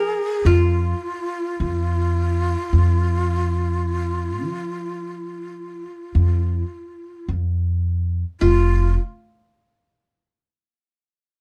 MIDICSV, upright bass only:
0, 0, Header, 1, 2, 480
1, 0, Start_track
1, 0, Key_signature, -4, "minor"
1, 0, Tempo, 500000
1, 10953, End_track
2, 0, Start_track
2, 0, Title_t, "Upright bass"
2, 0, Program_c, 0, 32
2, 0, Note_on_c, 0, 53, 74
2, 152, Note_off_c, 0, 53, 0
2, 432, Note_on_c, 0, 41, 84
2, 887, Note_off_c, 0, 41, 0
2, 1536, Note_on_c, 0, 41, 81
2, 2439, Note_off_c, 0, 41, 0
2, 2619, Note_on_c, 0, 41, 86
2, 4260, Note_off_c, 0, 41, 0
2, 4260, Note_on_c, 0, 53, 77
2, 5617, Note_off_c, 0, 53, 0
2, 5903, Note_on_c, 0, 41, 84
2, 6355, Note_off_c, 0, 41, 0
2, 6993, Note_on_c, 0, 41, 74
2, 7897, Note_off_c, 0, 41, 0
2, 8083, Note_on_c, 0, 29, 82
2, 8592, Note_off_c, 0, 29, 0
2, 10953, End_track
0, 0, End_of_file